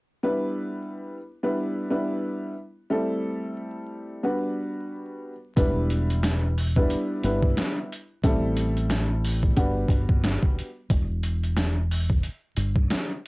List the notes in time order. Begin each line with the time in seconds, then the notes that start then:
0.23 G3 B3 D4 E4 B4
1.43 G3 B3 D4 E4 B4
1.90 G3 B3 D4 E4 B4
2.90 G3 A3 C4 E4 A4
4.23 G3 B3 D4 F#4 B4
5.56 E1 G3 B3 D4 E4 B4, kick, closed hi-hat
5.90 closed hi-hat
6.10 closed hi-hat
6.23 snare, closed hi-hat
6.58 open hi-hat
6.76 G3 B3 D4 E4 B4, kick
6.90 closed hi-hat
7.23 G1 G3 B3 D4 E4 B4, closed hi-hat
7.42 kick
7.57 snare, closed hi-hat
7.92 closed hi-hat
8.23 A1 G3 A3 C4 E4 A4, kick, closed hi-hat
8.57 closed hi-hat
8.77 closed hi-hat
8.90 snare, closed hi-hat
9.25 open hi-hat
9.43 kick
9.57 G1 G3 B3 D4 F#4 B4, kick, closed hi-hat
9.89 G1, kick, closed hi-hat
10.09 kick
10.24 snare, closed hi-hat
10.43 kick
10.59 closed hi-hat
10.90 E1, kick, closed hi-hat
11.23 closed hi-hat
11.43 closed hi-hat
11.56 snare, closed hi-hat
11.91 open hi-hat
12.10 kick
12.23 closed hi-hat
12.57 G1, closed hi-hat
12.76 kick
12.90 snare, closed hi-hat